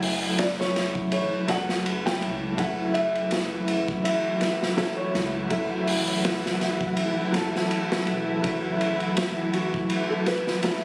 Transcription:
Already playing: sub bass F#1, clean electric guitar F#3 A3 C#4 E4, felt piano F#5
0.03 open hi-hat
0.23 ride
0.38 felt piano D5, snare, ride
0.60 felt piano C#5, snare
0.76 snare, ride
0.95 kick
1.12 sub bass A1, felt piano C#5, ride
1.48 sub bass F#1, clean electric guitar F#3 A3 C#4 F#4, felt piano F#5, snare, ride
1.69 snare
1.86 ride
2.05 clean electric guitar F#3 A3 C#4 E4, felt piano G5, snare
2.22 sub bass C#2, ride
2.57 sub bass F#1, string section E3 E4, clean electric guitar F#3 A3 C#4 E4, synth texture F#4, felt piano F#5, kick, ride
2.94 felt piano E5, ride
3.15 ride
3.31 snare, ride
3.68 ride
3.88 kick
4.04 felt piano E5, ride
4.41 snare, ride
4.63 snare
4.77 clean electric guitar F#3 A3 C#4 E4, felt piano A4, snare, ride
4.97 felt piano C#5
5.13 sub bass C#2, clean electric guitar F#3 A3 C#4 E4, snare, ride
5.49 sub bass F#1, clean electric guitar F#3 A3 C#4 E4, felt piano A4, kick, ride
5.87 open hi-hat
6.08 ride
6.25 snare, ride
6.46 snare
6.61 snare, ride
6.81 kick
6.97 sub bass A1, ride
7.33 sub bass F#1, clean electric guitar F#3 A3 C#4 A4, snare, ride
7.56 snare
7.71 ride
7.92 snare
8.07 sub bass E1, ride
8.42 sub bass F#1, clean electric guitar F#3 A3 C#4 E4, kick, ride
8.81 ride
9.00 ride
9.17 snare, ride
9.53 felt piano F#4, ride
9.74 kick
9.90 ride
10.10 felt piano A4
10.26 felt piano B4, snare, ride
10.47 snare
10.63 clean electric guitar F#3 A3 C#4 E4, snare, ride

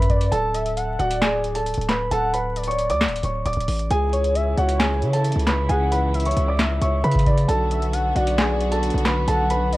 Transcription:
Already playing: 808-style bass F#2, grand piano B4 B5, downlifter
0.02 closed hi-hat
0.10 soft synth lead D5, kick, closed hi-hat
0.21 closed hi-hat
0.32 808-style bass D1, grand piano A4 A5, closed hi-hat
0.54 soft synth lead E5, closed hi-hat
0.66 closed hi-hat
0.77 soft synth lead F#5, closed hi-hat
0.99 808-style bass D1, grand piano F#4 F#5, soft synth lead D5, closed hi-hat
1.11 closed hi-hat
1.22 grand piano G#4 G#5, snare, clap, closed hi-hat
1.44 closed hi-hat
1.55 grand piano A4 A5, closed hi-hat
1.66 closed hi-hat
1.74 808-style bass D1, closed hi-hat
1.81 closed hi-hat
1.89 grand piano B4 B5, snare, clap, closed hi-hat
2.11 808-style bass D1, grand piano A4 A5, soft synth lead F#5, closed hi-hat
2.33 grand piano B4 B5, closed hi-hat
2.56 soft synth lead D5, closed hi-hat
2.63 closed hi-hat
2.68 grand piano C#5 C#6, closed hi-hat
2.79 closed hi-hat
2.90 808-style bass D2, grand piano D5 D6, closed hi-hat
3.01 snare, clap, closed hi-hat
3.06 808-style bass D1, closed hi-hat
3.16 closed hi-hat
3.23 808-style bass D1, grand piano C#5 C#6, closed hi-hat
3.46 808-style bass D1, grand piano D5 D6, closed hi-hat
3.53 808-style bass D1, closed hi-hat
3.60 closed hi-hat
3.68 808-style bass A1, closed hi-hat, open hi-hat
3.79 closed hi-hat
3.90 808-style bass C#2, string section C#3 E3 E4, grand piano G#4 G#5, closed hi-hat
4.13 soft synth lead C#5, closed hi-hat
4.24 closed hi-hat
4.35 soft synth lead E5, closed hi-hat
4.57 808-style bass C#2, grand piano F#4 F#5, soft synth lead C#5, closed hi-hat
4.69 closed hi-hat
4.79 grand piano G#4 G#5, snare, clap, closed hi-hat
5.02 808-style bass C#3, closed hi-hat
5.13 grand piano A4 A5, closed hi-hat
5.25 closed hi-hat
5.32 808-style bass C#2, closed hi-hat
5.40 closed hi-hat
5.47 grand piano B4 B5, snare, clap, closed hi-hat
5.69 808-style bass C#2, grand piano G#4 G#5, soft synth lead F#5, closed hi-hat
5.92 grand piano B4 B5, closed hi-hat
6.14 soft synth lead E5, closed hi-hat
6.20 closed hi-hat
6.25 grand piano C#5 C#6, closed hi-hat
6.31 closed hi-hat
6.37 808-style bass C#2, closed hi-hat
6.48 grand piano D5 D6
6.59 snare, clap, closed hi-hat
6.81 808-style bass C#2, grand piano C#5 C#6, closed hi-hat
7.04 808-style bass C#3, grand piano B4 B5, closed hi-hat
7.11 kick, closed hi-hat
7.19 closed hi-hat
7.26 soft synth lead D5, kick, closed hi-hat
7.37 closed hi-hat
7.48 808-style bass B1, string section D3 F#3 B3 F#4, grand piano A4 A5, closed hi-hat
7.71 soft synth lead E5, closed hi-hat
7.82 closed hi-hat
7.93 soft synth lead F#5, closed hi-hat
8.15 808-style bass B1, grand piano F#4 F#5, soft synth lead D5, closed hi-hat
8.27 closed hi-hat
8.38 grand piano G#4 G#5, snare, clap, closed hi-hat
8.60 closed hi-hat
8.72 grand piano A4 A5, closed hi-hat
8.83 closed hi-hat
8.90 808-style bass B1, closed hi-hat
8.98 closed hi-hat
9.05 grand piano B4 B5, snare, clap, closed hi-hat
9.28 808-style bass B1, grand piano A4 A5, soft synth lead F#5, closed hi-hat
9.50 grand piano B4 B5, closed hi-hat
9.72 soft synth lead D5, closed hi-hat

